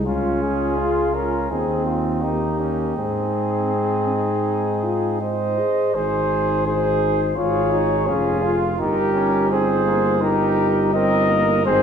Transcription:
Already playing: G#3
0.06 C#2 C#4 F4
0.42 G#4
0.79 F4
1.14 C#4 A#4
1.51 D#2 C4 D#4 G#4
1.86 F4
2.22 A#3 D#4 G4
2.60 C#4
2.96 G#2 C4 G#4
3.72 C4
4.09 D#4
4.84 F4
5.21 D#4 C5 D#5
5.58 G#4
5.94 G#1 D#4 G#4 C5
6.66 D#4 G#4 C5
7.36 G#1 F4 G#4 C#5
7.72 D#4
8.07 F1 C#4 F4 G#4
8.43 F4
8.78 G1 D#4 G4 A#4
9.14 C#4
9.49 C4 G#4 C5
9.85 A#3
10.21 D#4 G4 A#4
10.94 C4 D#4 A#4 D#5
11.30 A#3
11.65 G#1 C4 D#4 G#4 C5

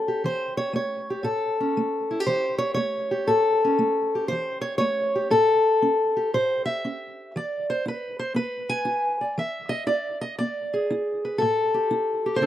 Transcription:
Already playing: A3 C#4 A4
0.08 G4
0.24 E3 C5
0.57 C#5
0.73 A3 C#5
1.10 G4
1.23 A2 A4
1.60 C#4
1.77 A3
2.11 E4
2.20 G4
2.27 E3 C5
2.58 C#5
2.74 A3 C#5
3.11 G4
3.27 A2 A4
3.64 C#4
3.79 A3
4.15 G4
4.28 E3 C5
4.61 C#5
4.78 A3 C#5
5.15 G4
5.30 A2 A4
5.82 C#4
6.17 G4
6.34 A2 C5
6.66 E5
6.85 C#4
7.36 E3 D5
7.70 C5
7.86 E4 B4
8.19 C5
8.34 B3 B4
8.69 G#5
8.85 E4
9.21 D5
9.38 E3 E5
9.69 D#5
9.87 E4 D5
10.21 D#5
10.39 B3 D5
10.74 G#4
10.90 E4
11.25 B4
11.38 A2 A4
11.74 G4
11.91 E4
12.26 G4
12.36 C5
12.41 D3 D4 A4

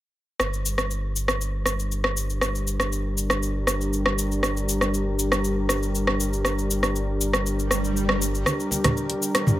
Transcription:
0.40 G1 G3 D4 G4 A#4, cross-stick, cabasa
0.53 cabasa
0.66 cabasa
0.78 cross-stick, cabasa
0.91 cabasa
1.16 cabasa
1.28 cross-stick, cabasa
1.41 cabasa
1.66 cross-stick, cabasa
1.79 cabasa
1.92 cabasa
2.04 cross-stick
2.17 cabasa
2.30 cabasa
2.41 cross-stick, cabasa
2.55 cabasa
2.67 cabasa
2.80 cross-stick, cabasa
2.92 cabasa
3.18 cabasa
3.30 cross-stick, cabasa
3.43 cabasa
3.67 cross-stick, cabasa
3.81 cabasa
3.93 cabasa
4.06 cross-stick
4.18 cabasa
4.32 cabasa
4.43 cross-stick, cabasa
4.57 cabasa
4.69 cabasa
4.81 cross-stick, cabasa
4.94 cabasa
5.19 cabasa
5.32 cross-stick, cabasa
5.44 cabasa
5.69 cross-stick, cabasa
5.83 cabasa
5.95 cabasa
6.07 cross-stick
6.20 cabasa
6.33 cabasa
6.45 cross-stick, cabasa
6.59 cabasa
6.71 cabasa
6.83 cross-stick, cabasa
6.96 cabasa
7.21 cabasa
7.33 cross-stick, cabasa
7.45 swell, cabasa
7.59 cabasa
7.71 cross-stick, cabasa
7.84 cabasa
7.97 cabasa
8.09 cross-stick
8.22 cabasa
8.35 cabasa
8.46 G3 D4 G4 A#4, cross-stick, riser, high conga, cabasa
8.60 cabasa
8.71 muted conga, high conga, cabasa
8.84 cross-stick, closed hi-hat, high conga, low conga, cabasa
8.97 cabasa
9.10 closed hi-hat, muted conga
9.22 cabasa
9.35 cross-stick, closed hi-hat, cabasa
9.47 mid tom, high conga, cabasa

